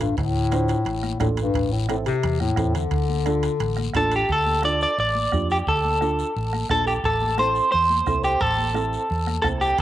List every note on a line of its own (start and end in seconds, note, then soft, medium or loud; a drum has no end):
0.00 0.11 A1 medium
0.00 0.16 G2 medium
0.00 high timbale medium
0.17 0.73 D2 medium
0.17 1.17 A2 medium
0.17 bombo low medium
0.17 high conga soft
0.17 high timbale medium
0.17 long guiro medium
0.51 0.76 D4 medium
0.51 0.76 F4 medium
0.51 0.76 C5 medium
0.51 bombo rim medium
0.51 high conga medium
0.51 high timbale medium
0.51 short guiro medium
0.68 high timbale medium
0.68 short guiro medium
0.85 1.13 A1 medium
0.85 high conga soft
0.85 high timbale medium
0.85 long guiro medium
1.03 bombo rim medium
1.03 high conga medium
1.20 1.48 A1 medium
1.20 1.28 A2 medium
1.20 1.44 D4 medium
1.20 1.45 F4 medium
1.20 1.45 A4 medium
1.20 bombo low medium
1.20 bombo rim medium
1.20 high conga medium
1.20 high timbale medium
1.20 short guiro medium
1.37 1.74 G2 medium
1.37 high timbale medium
1.37 short guiro medium
1.54 2.10 A1 medium
1.54 bombo low medium
1.54 high timbale medium
1.54 long guiro medium
1.72 1.88 A2 medium
1.89 1.97 A2 medium
1.89 2.13 C4 medium
1.89 2.13 E4 medium
1.89 2.13 A4 medium
1.89 bombo rim medium
1.89 high conga medium
1.89 high timbale medium
1.89 short guiro medium
2.06 2.39 C3 loud
2.06 high timbale medium
2.06 short guiro medium
2.23 2.51 E2 loud
2.23 high conga soft
2.23 high timbale medium
2.23 long guiro medium
2.40 2.76 A2 medium
2.40 bombo rim medium
2.40 high conga medium
2.56 2.85 E2 medium
2.56 2.81 C4 medium
2.56 2.82 E4 medium
2.56 2.82 A4 medium
2.56 bombo low medium
2.56 bombo rim medium
2.56 high conga medium
2.56 high timbale medium
2.56 short guiro medium
2.75 4.12 D3 medium
2.75 high timbale medium
2.75 short guiro medium
2.91 3.47 D2 medium
2.91 bombo low medium
2.91 high conga soft
2.91 high timbale medium
2.91 long guiro medium
3.09 high conga medium
3.26 3.50 D4 medium
3.26 3.51 F4 medium
3.26 3.51 A4 medium
3.26 bombo rim medium
3.26 high conga medium
3.26 high timbale medium
3.26 short guiro medium
3.43 high timbale medium
3.43 short guiro medium
3.60 3.88 A1 medium
3.60 high conga soft
3.60 high timbale medium
3.60 long guiro medium
3.77 bombo rim medium
3.77 high conga medium
3.93 4.22 A1 medium
3.93 4.19 D4 medium
3.93 4.20 F4 medium
3.93 4.20 A4 medium
3.93 4.13 A4 medium
3.93 4.28 A5 medium
3.93 bombo low medium
3.93 bombo rim medium
3.93 high conga medium
3.93 high timbale medium
3.93 short guiro medium
4.11 high timbale medium
4.11 short guiro medium
4.16 4.30 G4 medium
4.29 4.84 D2 medium
4.29 4.63 A4 medium
4.29 bombo low medium
4.29 high conga soft
4.29 long guiro medium
4.46 high conga medium
4.62 4.88 D4 medium
4.62 4.88 F4 medium
4.62 4.88 A4 medium
4.62 4.80 D5 medium
4.62 bombo rim medium
4.62 high conga medium
4.62 short guiro medium
4.81 4.98 D5 medium
4.81 short guiro medium
4.98 5.26 A1 medium
4.98 5.47 D5 medium
4.98 high conga soft
4.98 long guiro medium
5.15 high conga medium
5.32 5.60 F2 medium
5.32 5.57 D4 medium
5.32 5.57 F4 medium
5.32 5.57 G4 medium
5.32 bombo low medium
5.32 bombo rim medium
5.32 high conga medium
5.32 short guiro medium
5.50 5.57 G4 medium
5.50 short guiro medium
5.67 6.22 D2 medium
5.67 6.66 A4 medium
5.67 bombo low medium
5.67 high conga soft
5.67 long guiro medium
5.85 high conga medium
6.01 6.25 D4 medium
6.01 6.25 F4 medium
6.01 6.26 A4 medium
6.01 bombo rim medium
6.01 high conga medium
6.01 short guiro medium
6.19 short guiro medium
6.36 6.63 A1 medium
6.36 high conga soft
6.36 long guiro medium
6.53 bombo rim medium
6.53 high conga medium
6.69 6.97 A#1 medium
6.69 6.94 D4 medium
6.69 6.95 F4 medium
6.69 6.86 A4 medium
6.69 6.95 A4 medium
6.69 bombo low medium
6.69 bombo rim medium
6.69 high conga medium
6.69 short guiro medium
6.87 6.92 G4 medium
6.87 short guiro medium
7.04 7.59 A1 medium
7.04 7.39 A4 medium
7.04 bombo low medium
7.04 high conga soft
7.04 long guiro medium
7.22 high conga medium
7.38 7.62 C4 medium
7.38 7.63 E4 medium
7.38 7.63 A4 medium
7.38 7.71 C5 medium
7.38 bombo rim medium
7.38 high conga medium
7.38 short guiro medium
7.55 short guiro medium
7.72 8.01 E2 medium
7.72 8.24 C5 medium
7.72 high conga soft
7.72 long guiro medium
7.90 high conga medium
8.06 8.34 C2 medium
8.06 8.31 C4 medium
8.06 8.31 E4 medium
8.06 8.31 A4 medium
8.06 bombo low medium
8.06 bombo rim medium
8.06 high conga medium
8.06 short guiro medium
8.24 8.41 G4 medium
8.24 short guiro medium
8.40 8.96 A1 medium
8.40 9.41 A4 medium
8.40 bombo low medium
8.40 high conga soft
8.40 long guiro medium
8.58 high conga medium
8.74 8.99 C4 medium
8.74 8.99 E4 medium
8.74 8.99 A4 medium
8.74 bombo rim medium
8.74 high conga medium
8.74 short guiro medium
8.93 short guiro medium
9.10 9.38 E2 medium
9.10 high conga soft
9.10 long guiro medium
9.27 bombo rim medium
9.27 high conga medium
9.42 9.72 C2 medium
9.42 9.68 C4 medium
9.42 9.68 E4 medium
9.42 9.47 A4 medium
9.42 9.69 A4 medium
9.42 bombo low medium
9.42 bombo rim medium
9.42 high conga medium
9.42 short guiro medium
9.61 9.77 G4 medium
9.61 short guiro medium
9.78 9.82 D2 medium
9.78 bombo low medium
9.78 high timbale medium
9.78 long guiro medium